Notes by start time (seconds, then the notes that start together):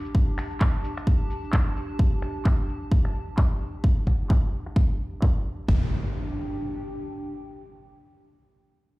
Already playing: D4 G4 A5
0.05 closed hi-hat, cabasa
0.15 kick, closed hi-hat, cabasa
0.38 finger snap, open hi-hat, cabasa
0.51 closed hi-hat, cabasa
0.61 kick, clap
0.84 open hi-hat, cabasa
0.97 finger snap, closed hi-hat, cabasa
1.07 kick, closed hi-hat, cabasa
1.21 cabasa
1.30 open hi-hat, cabasa
1.44 closed hi-hat, cabasa
1.53 kick, clap
1.67 closed hi-hat
1.76 open hi-hat, cabasa
1.90 closed hi-hat, cabasa
1.99 kick
2.22 finger snap, open hi-hat, cabasa
2.36 closed hi-hat, cabasa
2.45 kick, clap
2.69 open hi-hat, cabasa
2.82 closed hi-hat, cabasa
2.92 kick
3.05 finger snap, cabasa
3.15 open hi-hat, cabasa
3.28 closed hi-hat, cabasa
3.38 kick, clap
3.51 closed hi-hat
3.61 open hi-hat, cabasa
3.74 closed hi-hat, cabasa
3.84 kick
3.98 cabasa
4.07 finger snap, kick, open hi-hat
4.20 closed hi-hat, cabasa
4.30 kick, clap
4.44 cabasa
4.53 open hi-hat, cabasa
4.66 finger snap, cabasa
4.76 kick
4.90 cabasa
4.99 open hi-hat, cabasa
5.13 closed hi-hat, cabasa
5.22 kick, clap
5.36 closed hi-hat, cabasa
5.45 open hi-hat, cabasa
5.59 closed hi-hat, cabasa
5.68 G1 D4, kick, impact
5.77 G4
5.84 G5